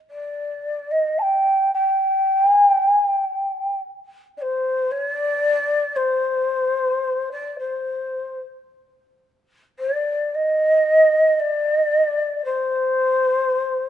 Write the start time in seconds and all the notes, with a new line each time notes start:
0.10 D5
0.91 D#5
1.18 G5 A5
1.73 G5
2.47 G#5
2.67 G5
2.88 G#5
3.08 G5
4.37 D5
4.41 C5
4.91 C#5
5.02 D5
5.96 C5
7.31 D5
7.59 C5
9.79 D5
10.34 D#5
11.39 D5
12.44 C5